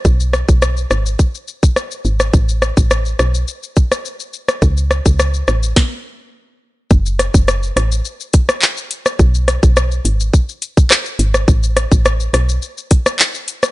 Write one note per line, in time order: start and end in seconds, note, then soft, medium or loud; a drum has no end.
0.05 0.44 B1 loud
0.05 kick loud
0.05 shaker medium
0.20 shaker medium
0.33 cross-stick medium
0.33 shaker soft
0.49 0.86 B1 medium
0.49 kick medium
0.49 shaker medium
0.62 cross-stick loud
0.62 shaker medium
0.77 shaker soft
0.91 1.16 G#1 medium
0.91 cross-stick medium
0.91 shaker medium
1.06 shaker medium
1.19 kick medium
1.19 shaker medium
1.35 shaker soft
1.48 shaker medium
1.63 kick medium
1.63 shaker medium
1.76 cross-stick medium
1.76 shaker medium
1.91 shaker medium
2.05 2.30 G#1 medium
2.05 shaker soft
2.20 cross-stick medium
2.20 shaker medium
2.34 2.72 A1 loud
2.34 kick loud
2.34 shaker medium
2.49 shaker medium
2.62 cross-stick medium
2.62 shaker soft
2.77 3.14 A1 loud
2.77 kick medium
2.77 shaker medium
2.91 cross-stick loud
2.91 shaker medium
3.06 shaker soft
3.19 3.45 B1 loud
3.19 cross-stick medium
3.19 shaker medium
3.34 shaker medium
3.48 shaker medium
3.63 shaker medium
3.76 kick medium
3.76 shaker medium
3.92 cross-stick medium
3.92 shaker medium
4.05 shaker medium
4.20 shaker medium
4.33 shaker soft
4.48 cross-stick medium
4.48 shaker medium
4.62 5.01 C#2 loud
4.62 kick loud
4.62 shaker medium
4.77 shaker medium
4.91 cross-stick medium
4.91 shaker soft
5.06 5.43 C#2 loud
5.06 kick medium
5.06 shaker medium
5.19 cross-stick loud
5.19 shaker medium
5.34 shaker soft
5.48 5.73 A1 loud
5.48 cross-stick medium
5.48 shaker medium
5.63 shaker medium
5.76 kick loud
5.76 snare medium
6.91 7.29 F#1 loud
6.91 kick loud
6.91 shaker medium
7.06 shaker medium
7.19 cross-stick medium
7.19 closed hi-hat medium
7.19 shaker soft
7.34 7.72 F#1 loud
7.34 kick medium
7.34 shaker medium
7.48 cross-stick loud
7.48 shaker medium
7.63 shaker soft
7.76 8.02 A1 loud
7.76 cross-stick loud
7.76 closed hi-hat medium
7.76 shaker medium
7.92 shaker medium
8.05 shaker medium
8.20 shaker medium
8.33 kick medium
8.33 closed hi-hat medium
8.33 shaker medium
8.49 cross-stick loud
8.49 shaker medium
8.62 clap medium
8.62 shaker medium
8.77 shaker medium
8.91 closed hi-hat medium
8.91 shaker soft
9.06 cross-stick medium
9.06 shaker medium
9.19 9.58 B1 loud
9.19 kick loud
9.19 shaker medium
9.35 shaker medium
9.48 cross-stick medium
9.48 closed hi-hat medium
9.48 shaker soft
9.63 10.00 B1 loud
9.63 kick medium
9.63 shaker medium
9.77 cross-stick loud
9.77 shaker medium
9.91 shaker soft
10.05 10.30 G#1 medium
10.05 closed hi-hat medium
10.05 shaker medium
10.20 shaker medium
10.34 kick medium
10.34 shaker medium
10.49 shaker medium
10.62 closed hi-hat medium
10.62 shaker medium
10.77 kick loud
10.77 shaker medium
10.91 cross-stick medium
10.91 clap medium
10.91 shaker medium
11.06 shaker medium
11.19 11.45 G#1 loud
11.19 closed hi-hat medium
11.19 shaker medium
11.34 cross-stick medium
11.34 shaker medium
11.48 11.87 A1 loud
11.48 kick loud
11.48 shaker medium
11.63 shaker medium
11.77 cross-stick medium
11.77 closed hi-hat medium
11.77 shaker soft
11.92 12.29 A1 loud
11.92 kick medium
11.92 shaker medium
12.05 cross-stick loud
12.05 shaker medium
12.20 shaker soft
12.33 12.59 B1 loud
12.33 cross-stick loud
12.33 closed hi-hat medium
12.33 shaker medium
12.49 shaker medium
12.62 shaker medium
12.78 shaker medium
12.91 kick medium
12.91 closed hi-hat medium
12.91 shaker medium
13.06 cross-stick loud
13.06 shaker medium
13.19 clap medium
13.19 shaker medium
13.34 shaker medium
13.48 closed hi-hat medium
13.48 shaker soft
13.63 cross-stick medium
13.63 shaker medium